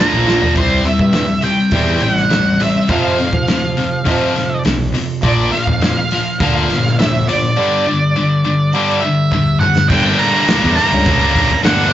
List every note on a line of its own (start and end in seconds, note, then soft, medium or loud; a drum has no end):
0.00 0.25 A#2 medium
0.00 0.26 D3 medium
0.00 0.56 D3 medium
0.00 0.25 F3 medium
0.00 0.26 A#3 medium
0.00 0.57 A#3 medium
0.00 0.27 D4 loud
0.00 0.56 D4 medium
0.00 0.25 F4 medium
0.00 0.53 A#5 loud
0.14 0.38 A#1 medium
0.26 0.54 A#2 medium
0.26 0.54 D3 medium
0.26 0.54 F3 medium
0.26 0.54 A#3 loud
0.26 0.55 D4 medium
0.26 0.56 F4 medium
0.26 snare medium
0.42 floor tom medium
0.55 0.81 C2 medium
0.55 0.83 C3 medium
0.55 0.84 E3 medium
0.55 0.83 G3 medium
0.55 0.83 C4 medium
0.55 0.87 C5 medium
0.55 kick medium
0.55 open hi-hat medium
0.84 1.11 C3 medium
0.84 1.12 E3 medium
0.84 1.11 G3 medium
0.84 1.46 E5 medium
0.84 open hi-hat medium
0.99 1.25 G2 medium
0.99 kick medium
1.13 1.40 C3 medium
1.13 1.41 E3 medium
1.13 1.40 G3 medium
1.13 snare loud
1.13 open hi-hat medium
1.42 1.69 C3 medium
1.42 1.70 E3 medium
1.42 1.70 G3 medium
1.42 2.03 G5 medium
1.42 open hi-hat soft
1.71 1.97 E2 medium
1.71 2.00 C3 medium
1.71 2.00 E3 medium
1.71 2.01 G3 medium
1.71 2.01 C4 medium
1.71 kick loud
1.71 open hi-hat medium
2.01 2.76 A1 medium
2.01 2.29 C3 medium
2.01 2.29 E3 medium
2.01 2.29 G3 medium
2.01 2.14 G5 medium
2.01 open hi-hat soft
2.14 2.63 F#5 medium
2.14 snare soft
2.30 2.57 C3 medium
2.30 2.57 E3 medium
2.30 2.58 G3 medium
2.30 snare loud
2.30 open hi-hat medium
2.60 2.87 C3 medium
2.60 2.87 E3 medium
2.60 2.87 G3 medium
2.60 2.90 E5 medium
2.60 open hi-hat medium
2.89 3.27 F2 loud
2.89 3.17 F2 medium
2.89 3.17 C3 medium
2.89 3.18 F3 medium
2.89 4.62 F5 medium
2.89 kick loud
2.89 open hi-hat medium
3.18 3.46 F2 medium
3.18 3.46 C3 medium
3.18 open hi-hat soft
3.33 3.95 F3 medium
3.33 kick medium
3.47 3.75 F2 medium
3.47 3.75 C3 medium
3.47 snare loud
3.47 open hi-hat medium
3.77 4.04 F2 medium
3.77 4.04 C3 medium
3.77 open hi-hat soft
4.05 4.33 F2 medium
4.05 4.34 C3 medium
4.05 4.56 F3 medium
4.05 4.34 F3 medium
4.05 kick loud
4.05 open hi-hat medium
4.36 4.62 F2 medium
4.36 4.62 C3 medium
4.36 snare soft
4.36 open hi-hat soft
4.65 4.90 B1 medium
4.65 4.92 F2 medium
4.65 4.92 C3 medium
4.65 snare loud
4.65 open hi-hat medium
4.94 5.21 F2 medium
4.94 5.21 C3 medium
4.94 open hi-hat medium
5.22 5.48 A#1 medium
5.22 5.51 A#2 medium
5.22 5.50 D3 medium
5.22 5.51 F3 medium
5.22 5.51 A#3 medium
5.22 5.51 D5 medium
5.22 kick medium
5.22 open hi-hat medium
5.52 5.79 A#2 medium
5.52 5.79 D3 medium
5.52 5.79 F3 medium
5.52 6.40 F5 loud
5.52 open hi-hat medium
5.67 5.92 F2 medium
5.67 kick medium
5.81 6.08 A#2 medium
5.81 6.09 D3 medium
5.81 6.09 F3 medium
5.81 snare loud
5.81 open hi-hat medium
6.11 6.38 A#2 medium
6.11 6.38 D3 medium
6.11 6.38 F3 medium
6.11 open hi-hat medium
6.40 6.65 D2 medium
6.40 6.68 A#2 medium
6.40 6.68 D3 medium
6.40 6.68 F3 loud
6.40 6.69 A#3 medium
6.40 6.99 F5 loud
6.40 kick loud
6.40 open hi-hat medium
6.70 7.45 G1 medium
6.70 6.96 A#2 medium
6.70 6.96 D3 medium
6.70 6.96 F3 medium
6.70 snare soft
6.70 open hi-hat medium
6.86 snare soft
6.99 7.25 A#2 medium
6.99 7.25 D3 medium
6.99 7.25 F3 medium
6.99 7.26 E5 medium
6.99 snare loud
6.99 open hi-hat medium
7.28 7.55 A#2 medium
7.28 7.54 D3 medium
7.28 7.55 F3 medium
7.28 9.28 D5 medium
7.28 open hi-hat medium
7.57 7.85 G2 medium
7.57 7.85 D3 medium
7.57 7.85 G3 medium
7.87 8.13 G2 medium
7.87 8.13 D3 medium
8.16 8.42 G2 medium
8.16 8.42 D3 medium
8.45 8.71 G2 medium
8.45 8.71 D3 medium
8.75 9.02 G2 medium
8.75 9.02 D3 medium
8.75 9.02 G3 loud
9.01 9.30 G2 medium
9.01 9.30 D3 medium
9.01 9.60 E5 medium
9.32 9.59 G2 medium
9.32 9.59 D3 medium
9.32 kick medium
9.60 9.88 G2 medium
9.60 9.88 D3 medium
9.60 9.89 F#5 medium
9.60 mid tom medium
9.76 snare medium
9.89 10.15 G1 loud
9.89 10.47 G2 medium
9.89 10.48 D3 medium
9.89 10.36 G3 medium
9.89 10.36 A#3 medium
9.89 10.20 G5 loud
9.89 kick loud
9.89 crash loud
9.93 10.34 D4 medium
10.18 10.47 D3 medium
10.18 10.34 G3 medium
10.18 10.34 A#3 medium
10.18 10.32 D4 medium
10.18 10.75 A#5 medium
10.18 open hi-hat medium
10.34 10.48 G3 medium
10.34 10.50 A#3 medium
10.34 10.50 D4 medium
10.48 11.07 G2 medium
10.48 10.76 D3 medium
10.48 10.77 G3 medium
10.48 10.78 A#3 loud
10.48 10.79 D4 loud
10.48 snare loud
10.48 open hi-hat medium
10.64 10.76 E2 loud
10.77 10.92 D3 medium
10.77 10.92 G3 medium
10.77 10.92 A#3 medium
10.77 10.91 D4 medium
10.77 11.60 A#5 medium
10.77 open hi-hat medium
10.91 11.54 C#2 medium
10.91 11.06 G3 medium
10.91 11.07 A#3 medium
10.91 11.08 D4 medium
10.91 muted distorted electric guitar stroke medium
11.05 11.93 G2 medium
11.05 11.50 D3 medium
11.05 11.22 G3 medium
11.05 11.22 A#3 medium
11.05 11.20 D4 medium
11.05 kick loud
11.05 open hi-hat medium
11.21 11.50 G3 medium
11.21 11.51 A#3 medium
11.21 11.49 D4 medium
11.35 kick medium
11.35 open hi-hat medium
11.49 11.65 G3 medium
11.49 11.66 A#3 medium
11.49 11.67 D4 medium
11.49 muted distorted electric guitar stroke medium
11.64 11.90 G1 loud
11.64 11.93 G2 loud
11.64 11.93 D3 medium
11.64 11.93 G3 medium
11.64 11.93 A#3 loud
11.64 11.93 D4 loud
11.64 11.93 F#5 medium
11.64 snare loud
11.64 open hi-hat medium